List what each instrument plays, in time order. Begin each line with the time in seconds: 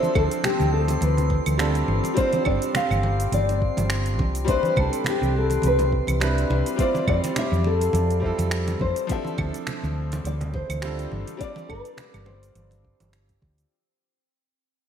Already playing: grand piano F3 C4 D4 E4 A4, synth texture C4 C7, nylon-string guitar C5
0.03 high conga, shaker
0.15 fingered electric bass D2, nylon-string guitar A4, kick, muted conga, low conga, claves
0.31 closed hi-hat, shaker
0.44 nylon-string guitar G4, finger snap, closed hi-hat, low conga, shaker
0.60 fingered electric bass D2, muted conga, high conga, shaker
0.74 nylon-string guitar A4
0.88 closed hi-hat, muted conga, shaker
1.01 fingered electric bass D2, nylon-string guitar B4, closed hi-hat, high conga, shaker
1.17 closed hi-hat, low conga, shaker
1.30 kick, muted conga
1.46 fingered electric bass D2, closed hi-hat, high conga, claves, shaker
1.58 grand piano G3 C4 D4 F4 A4, finger snap, closed hi-hat, muted conga, shaker
1.75 closed hi-hat, shaker
1.88 fingered electric bass G1, high conga
2.04 closed hi-hat, muted conga, shaker
2.14 grand piano G3 C4 D4, nylon-string guitar C5, kick, closed hi-hat, shaker
2.18 grand piano F4 C5
2.33 closed hi-hat, muted conga, high conga, shaker
2.45 fingered electric bass G1, nylon-string guitar D5, kick, low conga, claves
2.62 closed hi-hat, shaker
2.75 nylon-string guitar F5, finger snap, closed hi-hat, muted conga, low conga, shaker
2.90 fingered electric bass G1, high conga, claves, shaker
3.03 muted conga
3.20 closed hi-hat, shaker
3.32 fingered electric bass G1, nylon-string guitar D5, closed hi-hat, high conga, shaker
3.49 closed hi-hat, muted conga, shaker
3.62 kick
3.77 fingered electric bass G1, closed hi-hat, muted conga, high conga, shaker
3.90 finger snap, closed hi-hat, shaker
4.06 closed hi-hat, shaker
4.19 fingered electric bass C2, kick, muted conga, high conga
4.35 closed hi-hat, shaker
4.45 grand piano G3 C4 D4, kick, closed hi-hat
4.49 grand piano E4 B4, nylon-string guitar C5, shaker
4.63 high conga, shaker
4.76 fingered electric bass C2, nylon-string guitar A4, kick, muted conga, low conga, claves
4.93 closed hi-hat, shaker
5.04 finger snap, closed hi-hat, muted conga, low conga, shaker
5.09 nylon-string guitar G4
5.22 fingered electric bass C2, high conga, shaker
5.38 nylon-string guitar A4
5.50 closed hi-hat, muted conga, shaker
5.62 fingered electric bass C2, closed hi-hat, high conga, shaker
5.67 nylon-string guitar B4
5.79 closed hi-hat, muted conga, low conga, shaker
5.92 kick
6.07 fingered electric bass C2, closed hi-hat, high conga, claves, shaker
6.20 grand piano G3 C4 D4 E4 B4, finger snap, closed hi-hat, muted conga, shaker
6.38 closed hi-hat, shaker
6.50 fingered electric bass C2, muted conga, high conga
6.66 closed hi-hat, shaker
6.76 grand piano G3 C4 E4, nylon-string guitar C5, kick, closed hi-hat, shaker
6.80 grand piano F4 D5
6.95 muted conga, high conga, shaker
7.07 fingered electric bass F2, nylon-string guitar D5, kick, low conga, claves
7.24 closed hi-hat, muted conga, shaker
7.36 nylon-string guitar E5, finger snap, closed hi-hat, low conga, shaker
7.52 fingered electric bass F2, high conga, shaker
7.64 nylon-string guitar A4, muted conga
7.81 closed hi-hat, shaker
7.93 fingered electric bass F2, closed hi-hat, muted conga, high conga, shaker
8.11 closed hi-hat, shaker
8.20 grand piano G3 C4 E4, kick
8.24 grand piano F4 A4
8.38 fingered electric bass F2, closed hi-hat, muted conga, high conga, shaker
8.51 finger snap, closed hi-hat, shaker
8.68 closed hi-hat, muted conga, shaker
8.80 fingered electric bass F2, nylon-string guitar C5, kick, high conga
8.96 closed hi-hat, shaker
9.07 grand piano F3 C4 D4 E4, kick, closed hi-hat, muted conga, shaker
9.11 grand piano A4, nylon-string guitar E5
9.25 high conga, shaker
9.38 fingered electric bass D2, kick, muted conga, low conga, claves
9.54 closed hi-hat, shaker
9.67 finger snap, closed hi-hat, low conga, shaker
9.83 fingered electric bass D2, muted conga, high conga, shaker
10.12 closed hi-hat, muted conga, shaker
10.24 fingered electric bass D2, nylon-string guitar D5, closed hi-hat, high conga, shaker
10.41 closed hi-hat, low conga, shaker
10.54 nylon-string guitar C5, kick, muted conga
10.69 fingered electric bass D2, closed hi-hat, high conga, claves, shaker
10.81 grand piano G3 C4 D4 F4 A4, finger snap, closed hi-hat, muted conga, shaker
10.99 closed hi-hat, shaker
11.12 fingered electric bass G1, high conga
11.27 closed hi-hat, muted conga, shaker
11.37 grand piano G3 C4 D4, nylon-string guitar D5, kick, closed hi-hat
11.41 grand piano F4 D5, shaker
11.56 muted conga, high conga, shaker
11.69 fingered electric bass G1, nylon-string guitar B4, kick, low conga, claves
11.85 closed hi-hat, shaker
11.97 finger snap, closed hi-hat, muted conga, low conga, shaker
12.14 fingered electric bass G1, closed hi-hat, high conga, claves, shaker
12.26 nylon-string guitar C5, muted conga
12.43 closed hi-hat, shaker
12.55 fingered electric bass G1, closed hi-hat, high conga, shaker
12.71 closed hi-hat, muted conga, shaker
12.85 kick
13.00 fingered electric bass G1, closed hi-hat, muted conga, high conga, shaker
13.13 finger snap, closed hi-hat, shaker
13.29 kick, closed hi-hat, shaker
13.42 fingered electric bass D2, kick, muted conga, high conga
13.58 closed hi-hat, shaker